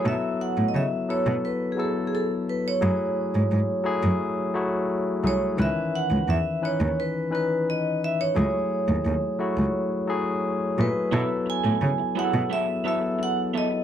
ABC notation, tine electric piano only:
X:1
M:4/4
L:1/8
Q:1/4=87
K:F#dor
V:1 name="Tine electric piano"
[F,B,DEA]2 z [F,B,EA] z [F,B,EA]2 z | [F,A,EG]2 z [F,A,EG] z [F,A,EF] z [F,A,EG] | [D,E,CB]2 z [E,CDB] z [E,CDB]2 z | [F,A,EG]2 z [F,A,EF] z [F,A,EG] z [F,A,EG] |
[F,B,EA]2 z [F,B,EGA] z [F,B,EA]2 z |]